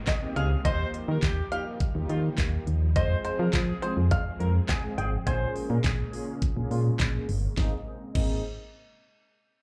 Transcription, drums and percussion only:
0.07 kick loud
0.07 snare medium
0.07 clap loud
0.07 closed hi-hat medium
0.36 closed hi-hat medium
0.65 kick loud
0.65 closed hi-hat medium
0.94 closed hi-hat medium
1.22 kick loud
1.22 snare medium
1.22 clap loud
1.22 closed hi-hat medium
1.52 closed hi-hat medium
1.80 kick loud
1.80 closed hi-hat medium
2.09 closed hi-hat medium
2.38 kick loud
2.38 snare medium
2.38 clap loud
2.38 closed hi-hat medium
2.67 closed hi-hat medium
2.96 kick loud
2.96 closed hi-hat medium
3.25 closed hi-hat medium
3.53 kick loud
3.53 snare medium
3.53 clap loud
3.53 closed hi-hat medium
3.82 closed hi-hat medium
4.11 kick loud
4.11 closed hi-hat medium
4.40 closed hi-hat medium
4.69 kick loud
4.69 snare medium
4.69 clap loud
4.69 closed hi-hat medium
4.98 closed hi-hat medium
5.27 kick loud
5.27 closed hi-hat medium
5.56 open hi-hat medium
5.84 kick loud
5.84 snare medium
5.84 clap loud
5.84 closed hi-hat medium
6.13 open hi-hat medium
6.42 kick loud
6.42 closed hi-hat medium
6.71 open hi-hat medium
6.99 kick loud
6.99 snare loud
6.99 clap loud
6.99 closed hi-hat medium
7.29 open hi-hat medium
7.57 kick loud
7.57 snare medium
8.15 kick loud
8.15 crash medium

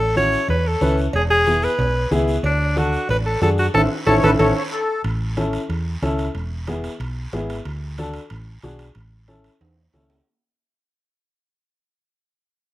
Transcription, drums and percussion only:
0.16 high conga medium
0.16 short guiro medium
0.32 short guiro medium
0.48 cowbell medium
0.48 high conga soft
0.48 low conga medium
0.48 long guiro medium
0.81 high conga medium
0.81 short guiro medium
0.98 short guiro medium
1.13 cowbell loud
1.13 high conga soft
1.13 long guiro medium
1.46 high conga medium
1.46 short guiro medium
1.62 short guiro medium
1.79 cowbell medium
1.79 high conga soft
1.79 low conga medium
1.79 long guiro medium
2.12 high conga medium
2.12 short guiro medium
2.28 short guiro medium
2.44 cowbell loud
2.44 long guiro medium
2.77 high conga medium
2.77 short guiro medium
2.93 short guiro medium
3.09 cowbell medium
3.09 high conga soft
3.09 low conga medium
3.09 long guiro medium
3.42 high conga medium
3.42 short guiro medium
3.58 short guiro medium
3.74 high conga loud
3.74 high timbale loud
3.74 long guiro medium
4.07 high conga medium
4.07 high timbale loud
4.07 long guiro loud
4.23 high conga loud
4.23 high timbale loud
4.23 long guiro loud
4.39 high conga loud
4.39 high timbale loud
4.39 long guiro loud
5.04 high conga soft
5.04 high timbale medium
5.04 long guiro medium
5.37 high conga medium
5.37 high timbale medium
5.37 short guiro medium
5.53 high timbale medium
5.53 short guiro medium
5.70 high timbale medium
5.70 long guiro medium
6.02 high conga medium
6.02 high timbale medium
6.02 short guiro medium
6.18 high timbale medium
6.18 short guiro medium
6.35 high conga soft
6.35 high timbale medium
6.35 long guiro medium
6.67 high conga medium
6.67 high timbale medium
6.67 short guiro medium
6.84 high timbale medium
6.84 short guiro medium
7.00 high conga soft
7.00 high timbale medium
7.00 long guiro medium
7.33 high conga medium
7.33 high timbale medium
7.33 low timbale medium
7.33 short guiro medium
7.50 high timbale medium
7.50 short guiro medium
7.65 high conga soft
7.65 high timbale medium
7.65 long guiro medium
7.98 high conga medium
7.98 high timbale medium
7.98 short guiro medium
8.14 high timbale medium
8.14 short guiro medium
8.30 high conga soft
8.30 high timbale medium
8.30 long guiro medium
8.62 high conga medium
8.62 high timbale medium
8.62 short guiro medium
8.79 high timbale medium
8.79 short guiro medium
8.95 high conga soft
8.95 high timbale medium
8.95 long guiro medium
9.28 high conga medium
9.28 high timbale medium
9.28 short guiro medium
9.44 high timbale medium
9.44 short guiro medium
9.61 high timbale medium
9.61 long guiro medium
9.77 low timbale medium
9.93 high conga medium
9.93 low timbale medium
9.93 short guiro medium
10.10 low timbale medium
10.10 short guiro medium

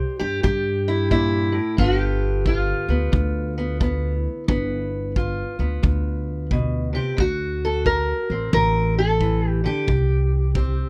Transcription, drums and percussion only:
0.44 kick medium
1.11 kick medium
1.78 kick medium
2.46 kick medium
3.13 kick medium
3.81 kick medium
4.49 kick medium
5.16 kick medium
5.84 kick medium
6.51 kick medium
7.18 kick medium
7.86 kick medium
8.53 kick medium
9.21 kick medium
9.88 kick medium
10.55 kick medium

